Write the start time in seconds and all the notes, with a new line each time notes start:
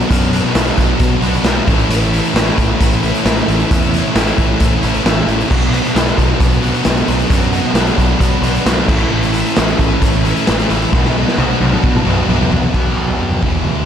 0.00 closed hi-hat
0.09 F#2 B2 F#3 B3 D4 F#4, kick, closed hi-hat
0.22 closed hi-hat
0.31 B3 D4 F#4, closed hi-hat
0.45 snare
0.54 B1 F#3 B3 D4 F#4, snare, closed hi-hat
0.67 closed hi-hat
0.78 B1, kick, closed hi-hat
1.00 B2, kick, closed hi-hat
1.21 B1 B3 D4 F#4, closed hi-hat
1.34 closed hi-hat
1.43 B1 B2 F#3 B3 D4 F#4, snare, closed hi-hat
1.57 snare
1.66 A1 A2 E3 A3 C#4 E4, kick, closed hi-hat
1.79 closed hi-hat
1.88 A1 A2 E3 A3 C#4 E4, closed hi-hat
2.02 closed hi-hat
2.11 A3 C#4 E4, closed hi-hat
2.24 closed hi-hat
2.33 A1 E3 A3 C#4 E4, snare, closed hi-hat
2.47 closed hi-hat
2.58 A1, kick, closed hi-hat
2.81 A1, kick, closed hi-hat
2.92 closed hi-hat
3.02 A3 C#4 E4, closed hi-hat
3.14 closed hi-hat
3.24 A1 A2 E3 A3 C#4 E4, snare, closed hi-hat
3.37 snare, closed hi-hat
3.47 A1 A3 C#4 E4, closed hi-hat
3.60 closed hi-hat
3.69 E2 A2 E3 A3 C#4 E4, kick, closed hi-hat
3.82 closed hi-hat
3.92 A3 C#4 E4, closed hi-hat
4.05 snare
4.14 A1 E3 A3 C#4 E4, snare, closed hi-hat
4.27 closed hi-hat
4.38 A1, kick, closed hi-hat
4.60 A2, kick, closed hi-hat
4.82 A1 A3 C#4 E4, closed hi-hat
4.94 closed hi-hat
5.03 A1 A2 E3 A3 C#4 E4, snare, closed hi-hat
5.17 snare
5.27 A1 A3 C#4 E4, closed hi-hat
5.40 closed hi-hat
5.48 B1 B2 F#3 B3 D4 F#4, kick, crash
5.62 closed hi-hat
5.71 B3 D4 F#4, closed hi-hat
5.85 snare, closed hi-hat
5.95 B1 F#3 B3 D4 F#4, snare, closed hi-hat
6.08 closed hi-hat
6.18 B1, kick, closed hi-hat
6.40 B1, kick, closed hi-hat
6.52 closed hi-hat
6.61 B3 D4 F#4, closed hi-hat
6.74 closed hi-hat
6.85 B1 B2 F#3 B3 D4 F#4, snare, closed hi-hat
6.97 closed hi-hat
7.08 B1 B3 D4 F#4, closed hi-hat
7.19 closed hi-hat
7.30 F#2 B2 F#3 B3 D4 F#4, kick, closed hi-hat
7.42 closed hi-hat
7.52 B3 D4 F#4, closed hi-hat
7.64 snare
7.74 B1 F#3 B3 D4, snare, closed hi-hat
7.78 F#4
7.87 closed hi-hat
7.98 B1, kick, closed hi-hat
8.20 B2, kick, closed hi-hat
8.42 B1 B3 D4 F#4, closed hi-hat
8.55 closed hi-hat
8.65 B1 B2 F#3 B3 D4 F#4, snare, closed hi-hat
8.78 snare
8.88 A1 A2 E3 A3 C#4 E4, kick, crash
9.10 A1 A2 E3 A3 C#4 E4
9.23 closed hi-hat
9.33 A3 C#4 E4, closed hi-hat
9.45 closed hi-hat
9.56 A1 E3 A3 C#4 E4, snare, closed hi-hat
9.68 closed hi-hat
9.79 A1, kick, closed hi-hat
10.01 A1, kick, closed hi-hat
10.13 closed hi-hat
10.24 A3 C#4 E4, closed hi-hat
10.36 closed hi-hat
10.47 A1 A2 E3 A3 C#4 E4, snare, closed hi-hat
10.59 snare, closed hi-hat
10.68 A1 A3 C#4 E4, closed hi-hat
10.82 closed hi-hat
10.91 B1 B2 F#3 B3 D4 F#4, kick, snare
11.05 snare
11.16 B3 D4 F#4
11.28 snare
11.38 B1 F#3 B3 D4 F#4, high tom
11.61 B1, high tom
11.73 mid tom
11.84 B2, kick
11.95 mid tom
12.06 B1 B3 D4 F#4, mid tom
12.28 B1 B2 F#3 B3 D4 F#4, mid tom
12.41 floor tom
12.51 B1 B3 D4 F#4, floor tom
12.63 floor tom
12.73 B1 B2 F#3 B3, kick, floor tom, crash
12.97 B1
13.08 floor tom, mid tom
13.20 F#2
13.31 floor tom
13.42 E1 E2 B2 E3, kick, floor tom
13.65 D2, floor tom